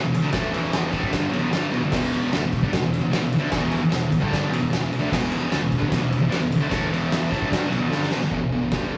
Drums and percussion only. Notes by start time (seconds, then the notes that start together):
0.14 ride
0.33 kick, snare, ride
0.54 ride
0.73 snare, ride
0.93 kick, ride
1.03 kick
1.13 kick, snare, ride
1.33 ride
1.53 snare, ride
1.74 ride
1.92 kick, snare, crash
2.14 ride
2.33 snare, ride
2.53 kick, ride
2.63 kick
2.73 kick, snare, ride
2.94 ride
3.13 snare, ride
3.32 ride
3.52 kick, snare, ride
3.71 ride
3.92 snare, ride
4.12 kick, ride
4.23 kick
4.33 kick, snare, ride
4.53 ride
4.73 snare, ride
4.93 ride
5.12 kick, snare, crash
5.32 ride
5.52 snare, ride
5.72 kick, ride
5.82 kick
5.92 kick, snare, ride
6.12 ride
6.32 snare, ride
6.52 ride
6.71 kick, snare, ride
6.93 ride
7.12 snare, ride
7.32 kick, ride
7.42 kick
7.52 kick, snare, ride
7.72 ride
7.92 snare
8.03 snare
8.11 snare
8.21 snare
8.31 kick, floor tom
8.52 floor tom
8.72 kick, snare, floor tom
8.93 floor tom